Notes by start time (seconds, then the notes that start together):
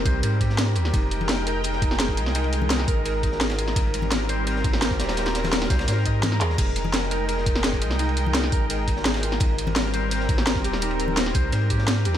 Already playing: G3 C4 D#4 F4 G4 A#4
0.05 C2 C5, kick, open hi-hat, ride
0.23 G#2 C5, closed hi-hat, ride
0.41 G4, kick, closed hi-hat, ride
0.50 snare
0.58 snare, closed hi-hat, ride
0.75 D#2 G4, closed hi-hat, ride
0.85 snare
0.93 F1 G#3 D#4 A#4 G5, kick, closed hi-hat, ride
1.11 closed hi-hat, ride
1.21 ride, high conga
1.29 snare, closed hi-hat, ride
1.38 snare
1.47 A#4, closed hi-hat, ride
1.64 A#4, closed hi-hat, ride
1.73 snare
1.82 D#4, kick, closed hi-hat, ride
1.91 snare
1.99 G#4, snare, closed hi-hat, ride
2.08 kick, snare
2.17 C2 F4, closed hi-hat, ride
2.26 snare
2.35 D#4, closed hi-hat, ride
2.44 ride
2.53 closed hi-hat, ride
2.62 high conga
2.70 snare, closed hi-hat, ride
2.79 snare
2.88 G#1 A#4, kick, open hi-hat
3.05 A#4, closed hi-hat, ride
3.23 D#4, kick, closed hi-hat, ride
3.32 snare
3.40 G#4, snare, closed hi-hat, ride
3.50 snare, ride
3.58 F4, closed hi-hat, ride
3.67 snare
3.76 G#1 G3 C4 D#4, kick, closed hi-hat, ride
3.94 closed hi-hat, ride
4.02 ride, high conga
4.11 snare, closed hi-hat, ride
4.20 snare
4.29 C5, closed hi-hat, ride
4.47 C5, closed hi-hat, ride
4.56 snare
4.64 D#4, kick, closed hi-hat, ride
4.73 snare
4.81 A#4, snare, closed hi-hat, ride
4.91 kick, snare
4.99 D#1 G4, snare, closed hi-hat, ride
5.08 snare, ride
5.17 D#4, snare, closed hi-hat, ride
5.26 snare, ride
5.35 snare, closed hi-hat, ride
5.44 snare, ride, high conga
5.53 snare, closed hi-hat, ride
5.62 snare, ride
5.70 C2 C5, kick, snare, open hi-hat, ride
5.79 snare, ride
5.87 G#2 C5, snare, closed hi-hat, ride
5.98 snare
6.05 D#5, kick, closed hi-hat, ride
6.23 snare, closed hi-hat, ride, high conga
6.32 snare
6.40 D#2 G#4, clap, closed hi-hat, ride
6.50 snare
6.58 F1 G#3 D#4 G5, kick, closed hi-hat, crash, ride
6.76 closed hi-hat, ride
6.85 ride, high conga
6.94 snare, closed hi-hat, ride
7.03 snare
7.11 A#4, closed hi-hat, ride
7.28 A#4, closed hi-hat, ride
7.38 snare
7.46 D#4, kick, closed hi-hat, ride
7.55 snare
7.64 G#4, snare, closed hi-hat, ride
7.73 kick, snare
7.82 C2 F4, closed hi-hat, ride
7.91 snare
7.99 D#4, closed hi-hat, ride
8.09 ride
8.17 closed hi-hat, ride
8.26 high conga
8.35 snare, closed hi-hat, ride
8.43 snare
8.52 G#1 A#4, kick, open hi-hat
8.70 A#4, closed hi-hat, ride
8.88 D#4, kick, closed hi-hat, ride
8.96 snare
9.05 G#4, snare, closed hi-hat, ride
9.14 snare, ride
9.23 F4, closed hi-hat, ride
9.32 snare
9.40 G#1 G3 C4 D#4 A#4, kick, closed hi-hat, ride
9.58 closed hi-hat, ride
9.67 ride, high conga
9.76 snare, closed hi-hat, ride
9.86 snare
9.94 C5, closed hi-hat, ride
10.11 C5, closed hi-hat, ride
10.20 snare
10.29 D#4, kick, closed hi-hat, ride
10.38 snare
10.46 A#4, snare, closed hi-hat, ride
10.55 kick, snare
10.64 D#1 G4, closed hi-hat, ride
10.73 snare
10.82 D#4, closed hi-hat, ride
10.91 ride
11.00 closed hi-hat, ride
11.08 high conga
11.17 snare, closed hi-hat, ride
11.26 snare
11.34 C2 C5, kick, open hi-hat, ride
11.52 G#2 C5, closed hi-hat, ride
11.70 G4, kick, closed hi-hat, ride
11.78 snare
11.88 snare, closed hi-hat, ride
12.05 D#2 G4, closed hi-hat, ride
12.14 snare